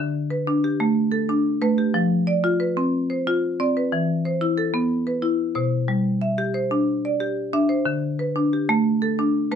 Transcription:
0, 0, Header, 1, 2, 480
1, 0, Start_track
1, 0, Tempo, 329128
1, 2842, Time_signature, 12, 3, 24, 8
1, 13932, End_track
2, 0, Start_track
2, 0, Title_t, "Marimba"
2, 0, Program_c, 0, 12
2, 0, Note_on_c, 0, 50, 89
2, 0, Note_on_c, 0, 76, 60
2, 203, Note_off_c, 0, 76, 0
2, 439, Note_off_c, 0, 50, 0
2, 445, Note_on_c, 0, 71, 64
2, 690, Note_on_c, 0, 62, 80
2, 935, Note_on_c, 0, 67, 66
2, 1164, Note_off_c, 0, 71, 0
2, 1167, Note_off_c, 0, 62, 0
2, 1168, Note_on_c, 0, 57, 88
2, 1627, Note_on_c, 0, 69, 63
2, 1646, Note_off_c, 0, 57, 0
2, 1649, Note_off_c, 0, 67, 0
2, 1885, Note_on_c, 0, 62, 75
2, 2354, Note_off_c, 0, 69, 0
2, 2356, Note_on_c, 0, 71, 72
2, 2363, Note_on_c, 0, 57, 83
2, 2364, Note_off_c, 0, 62, 0
2, 2597, Note_on_c, 0, 67, 63
2, 2832, Note_on_c, 0, 53, 88
2, 2842, Note_off_c, 0, 57, 0
2, 3079, Note_off_c, 0, 67, 0
2, 3079, Note_off_c, 0, 71, 0
2, 3313, Note_on_c, 0, 74, 74
2, 3317, Note_off_c, 0, 53, 0
2, 3556, Note_on_c, 0, 65, 86
2, 3791, Note_on_c, 0, 71, 65
2, 4037, Note_off_c, 0, 74, 0
2, 4038, Note_off_c, 0, 65, 0
2, 4039, Note_on_c, 0, 60, 86
2, 4515, Note_off_c, 0, 71, 0
2, 4520, Note_off_c, 0, 60, 0
2, 4520, Note_on_c, 0, 72, 61
2, 4771, Note_on_c, 0, 65, 84
2, 5240, Note_off_c, 0, 72, 0
2, 5246, Note_off_c, 0, 65, 0
2, 5248, Note_on_c, 0, 74, 67
2, 5249, Note_on_c, 0, 60, 74
2, 5495, Note_on_c, 0, 71, 66
2, 5722, Note_on_c, 0, 52, 77
2, 5725, Note_off_c, 0, 60, 0
2, 5964, Note_off_c, 0, 74, 0
2, 5968, Note_off_c, 0, 71, 0
2, 6201, Note_off_c, 0, 52, 0
2, 6203, Note_on_c, 0, 72, 63
2, 6434, Note_on_c, 0, 64, 73
2, 6673, Note_on_c, 0, 69, 70
2, 6908, Note_on_c, 0, 59, 82
2, 6918, Note_off_c, 0, 64, 0
2, 6922, Note_off_c, 0, 72, 0
2, 7391, Note_on_c, 0, 71, 63
2, 7395, Note_off_c, 0, 59, 0
2, 7397, Note_off_c, 0, 69, 0
2, 7617, Note_on_c, 0, 64, 80
2, 8096, Note_on_c, 0, 72, 63
2, 8102, Note_on_c, 0, 47, 81
2, 8109, Note_off_c, 0, 64, 0
2, 8116, Note_off_c, 0, 71, 0
2, 8578, Note_on_c, 0, 55, 81
2, 8592, Note_off_c, 0, 47, 0
2, 8829, Note_off_c, 0, 72, 0
2, 9064, Note_on_c, 0, 76, 65
2, 9070, Note_off_c, 0, 55, 0
2, 9306, Note_on_c, 0, 67, 75
2, 9542, Note_on_c, 0, 72, 62
2, 9787, Note_on_c, 0, 62, 76
2, 9793, Note_off_c, 0, 76, 0
2, 9795, Note_off_c, 0, 67, 0
2, 10273, Note_off_c, 0, 72, 0
2, 10275, Note_off_c, 0, 62, 0
2, 10282, Note_on_c, 0, 74, 65
2, 10505, Note_on_c, 0, 67, 74
2, 10984, Note_on_c, 0, 62, 84
2, 10987, Note_on_c, 0, 76, 68
2, 10995, Note_off_c, 0, 67, 0
2, 11003, Note_off_c, 0, 74, 0
2, 11216, Note_on_c, 0, 72, 69
2, 11456, Note_on_c, 0, 50, 83
2, 11475, Note_off_c, 0, 62, 0
2, 11711, Note_off_c, 0, 72, 0
2, 11716, Note_off_c, 0, 76, 0
2, 11948, Note_on_c, 0, 71, 65
2, 11951, Note_off_c, 0, 50, 0
2, 12188, Note_on_c, 0, 62, 78
2, 12442, Note_on_c, 0, 67, 61
2, 12675, Note_on_c, 0, 57, 93
2, 12678, Note_off_c, 0, 62, 0
2, 12678, Note_off_c, 0, 71, 0
2, 13154, Note_on_c, 0, 69, 62
2, 13161, Note_off_c, 0, 57, 0
2, 13165, Note_off_c, 0, 67, 0
2, 13399, Note_on_c, 0, 62, 77
2, 13879, Note_on_c, 0, 57, 76
2, 13881, Note_off_c, 0, 69, 0
2, 13881, Note_on_c, 0, 71, 73
2, 13884, Note_off_c, 0, 62, 0
2, 13932, Note_off_c, 0, 57, 0
2, 13932, Note_off_c, 0, 71, 0
2, 13932, End_track
0, 0, End_of_file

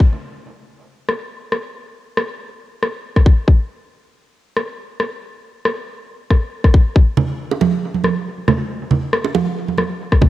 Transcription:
0, 0, Header, 1, 2, 480
1, 0, Start_track
1, 0, Tempo, 434783
1, 1, Time_signature, 4, 2, 24, 8
1, 11360, End_track
2, 0, Start_track
2, 0, Title_t, "Drums"
2, 1200, Note_on_c, 9, 37, 48
2, 1310, Note_off_c, 9, 37, 0
2, 1679, Note_on_c, 9, 37, 46
2, 1789, Note_off_c, 9, 37, 0
2, 2399, Note_on_c, 9, 37, 56
2, 2509, Note_off_c, 9, 37, 0
2, 3119, Note_on_c, 9, 37, 46
2, 3230, Note_off_c, 9, 37, 0
2, 3492, Note_on_c, 9, 36, 58
2, 3492, Note_on_c, 9, 37, 45
2, 3599, Note_off_c, 9, 36, 0
2, 3599, Note_on_c, 9, 36, 98
2, 3603, Note_off_c, 9, 37, 0
2, 3710, Note_off_c, 9, 36, 0
2, 3839, Note_on_c, 9, 36, 107
2, 3950, Note_off_c, 9, 36, 0
2, 5040, Note_on_c, 9, 37, 47
2, 5151, Note_off_c, 9, 37, 0
2, 5519, Note_on_c, 9, 37, 44
2, 5629, Note_off_c, 9, 37, 0
2, 6240, Note_on_c, 9, 37, 55
2, 6351, Note_off_c, 9, 37, 0
2, 6960, Note_on_c, 9, 37, 46
2, 6961, Note_on_c, 9, 36, 59
2, 7071, Note_off_c, 9, 36, 0
2, 7071, Note_off_c, 9, 37, 0
2, 7333, Note_on_c, 9, 36, 62
2, 7334, Note_on_c, 9, 37, 46
2, 7441, Note_off_c, 9, 36, 0
2, 7441, Note_on_c, 9, 36, 99
2, 7444, Note_off_c, 9, 37, 0
2, 7551, Note_off_c, 9, 36, 0
2, 7681, Note_on_c, 9, 36, 103
2, 7792, Note_off_c, 9, 36, 0
2, 7917, Note_on_c, 9, 64, 91
2, 8027, Note_off_c, 9, 64, 0
2, 8295, Note_on_c, 9, 60, 63
2, 8402, Note_off_c, 9, 60, 0
2, 8402, Note_on_c, 9, 60, 58
2, 8406, Note_on_c, 9, 63, 91
2, 8512, Note_off_c, 9, 60, 0
2, 8516, Note_off_c, 9, 63, 0
2, 8770, Note_on_c, 9, 63, 51
2, 8874, Note_off_c, 9, 63, 0
2, 8874, Note_on_c, 9, 63, 57
2, 8881, Note_on_c, 9, 37, 50
2, 8984, Note_off_c, 9, 63, 0
2, 8991, Note_off_c, 9, 37, 0
2, 9361, Note_on_c, 9, 37, 46
2, 9361, Note_on_c, 9, 64, 78
2, 9471, Note_off_c, 9, 37, 0
2, 9471, Note_off_c, 9, 64, 0
2, 9835, Note_on_c, 9, 64, 76
2, 9945, Note_off_c, 9, 64, 0
2, 10080, Note_on_c, 9, 37, 60
2, 10190, Note_off_c, 9, 37, 0
2, 10207, Note_on_c, 9, 60, 60
2, 10317, Note_off_c, 9, 60, 0
2, 10320, Note_on_c, 9, 60, 65
2, 10321, Note_on_c, 9, 63, 87
2, 10431, Note_off_c, 9, 60, 0
2, 10431, Note_off_c, 9, 63, 0
2, 10691, Note_on_c, 9, 63, 52
2, 10793, Note_off_c, 9, 63, 0
2, 10793, Note_on_c, 9, 63, 62
2, 10799, Note_on_c, 9, 37, 52
2, 10904, Note_off_c, 9, 63, 0
2, 10910, Note_off_c, 9, 37, 0
2, 11173, Note_on_c, 9, 36, 57
2, 11173, Note_on_c, 9, 37, 50
2, 11277, Note_on_c, 9, 64, 69
2, 11280, Note_off_c, 9, 36, 0
2, 11280, Note_on_c, 9, 36, 92
2, 11283, Note_off_c, 9, 37, 0
2, 11360, Note_off_c, 9, 36, 0
2, 11360, Note_off_c, 9, 64, 0
2, 11360, End_track
0, 0, End_of_file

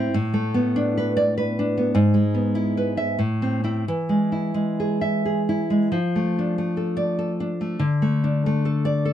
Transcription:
0, 0, Header, 1, 2, 480
1, 0, Start_track
1, 0, Key_signature, 0, "minor"
1, 0, Tempo, 606061
1, 94, Time_signature, 3, 2, 24, 8
1, 2015, Tempo, 653595
1, 2975, Tempo, 700117
1, 4415, Tempo, 627615
1, 5375, Tempo, 603015
1, 6906, End_track
2, 0, Start_track
2, 0, Title_t, "Nylon-string guitar"
2, 0, Program_c, 0, 24
2, 0, Note_on_c, 0, 60, 58
2, 0, Note_on_c, 0, 64, 68
2, 0, Note_on_c, 0, 72, 66
2, 108, Note_off_c, 0, 64, 0
2, 112, Note_off_c, 0, 60, 0
2, 113, Note_off_c, 0, 72, 0
2, 113, Note_on_c, 0, 45, 87
2, 266, Note_on_c, 0, 57, 65
2, 431, Note_on_c, 0, 59, 63
2, 601, Note_on_c, 0, 62, 75
2, 772, Note_on_c, 0, 71, 64
2, 920, Note_off_c, 0, 71, 0
2, 924, Note_on_c, 0, 74, 82
2, 991, Note_off_c, 0, 57, 0
2, 1086, Note_off_c, 0, 74, 0
2, 1089, Note_on_c, 0, 71, 73
2, 1152, Note_off_c, 0, 59, 0
2, 1249, Note_off_c, 0, 62, 0
2, 1259, Note_on_c, 0, 62, 72
2, 1405, Note_on_c, 0, 59, 63
2, 1509, Note_off_c, 0, 45, 0
2, 1541, Note_on_c, 0, 44, 89
2, 1543, Note_off_c, 0, 71, 0
2, 1546, Note_off_c, 0, 59, 0
2, 1550, Note_off_c, 0, 62, 0
2, 1695, Note_on_c, 0, 56, 60
2, 1857, Note_on_c, 0, 59, 58
2, 2019, Note_on_c, 0, 64, 66
2, 2183, Note_on_c, 0, 71, 59
2, 2327, Note_off_c, 0, 64, 0
2, 2330, Note_on_c, 0, 76, 73
2, 2405, Note_off_c, 0, 56, 0
2, 2458, Note_off_c, 0, 44, 0
2, 2484, Note_off_c, 0, 59, 0
2, 2484, Note_off_c, 0, 76, 0
2, 2487, Note_on_c, 0, 45, 73
2, 2488, Note_off_c, 0, 71, 0
2, 2659, Note_on_c, 0, 60, 60
2, 2808, Note_off_c, 0, 60, 0
2, 2817, Note_on_c, 0, 60, 47
2, 2822, Note_on_c, 0, 64, 66
2, 2962, Note_off_c, 0, 45, 0
2, 2964, Note_off_c, 0, 60, 0
2, 2967, Note_off_c, 0, 64, 0
2, 2996, Note_on_c, 0, 52, 75
2, 3140, Note_on_c, 0, 56, 47
2, 3296, Note_on_c, 0, 64, 47
2, 3441, Note_off_c, 0, 56, 0
2, 3450, Note_on_c, 0, 56, 56
2, 3624, Note_on_c, 0, 68, 47
2, 3769, Note_off_c, 0, 64, 0
2, 3772, Note_on_c, 0, 76, 65
2, 3929, Note_off_c, 0, 68, 0
2, 3937, Note_on_c, 0, 68, 53
2, 4030, Note_off_c, 0, 76, 0
2, 4098, Note_on_c, 0, 64, 53
2, 4176, Note_off_c, 0, 56, 0
2, 4245, Note_on_c, 0, 56, 48
2, 4388, Note_off_c, 0, 56, 0
2, 4391, Note_on_c, 0, 53, 70
2, 4398, Note_off_c, 0, 52, 0
2, 4415, Note_off_c, 0, 64, 0
2, 4416, Note_off_c, 0, 68, 0
2, 4572, Note_on_c, 0, 57, 44
2, 4747, Note_on_c, 0, 62, 43
2, 4887, Note_off_c, 0, 57, 0
2, 4897, Note_on_c, 0, 57, 53
2, 5041, Note_on_c, 0, 69, 46
2, 5191, Note_on_c, 0, 74, 62
2, 5350, Note_off_c, 0, 69, 0
2, 5359, Note_on_c, 0, 69, 55
2, 5458, Note_off_c, 0, 62, 0
2, 5460, Note_off_c, 0, 74, 0
2, 5531, Note_on_c, 0, 62, 56
2, 5616, Note_off_c, 0, 57, 0
2, 5694, Note_on_c, 0, 57, 47
2, 5815, Note_off_c, 0, 53, 0
2, 5843, Note_on_c, 0, 50, 75
2, 5852, Note_off_c, 0, 69, 0
2, 5856, Note_off_c, 0, 62, 0
2, 5857, Note_off_c, 0, 57, 0
2, 6022, Note_on_c, 0, 57, 53
2, 6196, Note_on_c, 0, 62, 53
2, 6365, Note_off_c, 0, 57, 0
2, 6374, Note_on_c, 0, 57, 64
2, 6526, Note_on_c, 0, 69, 59
2, 6683, Note_on_c, 0, 74, 82
2, 6836, Note_off_c, 0, 69, 0
2, 6845, Note_on_c, 0, 69, 60
2, 6900, Note_off_c, 0, 62, 0
2, 6906, Note_off_c, 0, 50, 0
2, 6906, Note_off_c, 0, 57, 0
2, 6906, Note_off_c, 0, 69, 0
2, 6906, Note_off_c, 0, 74, 0
2, 6906, End_track
0, 0, End_of_file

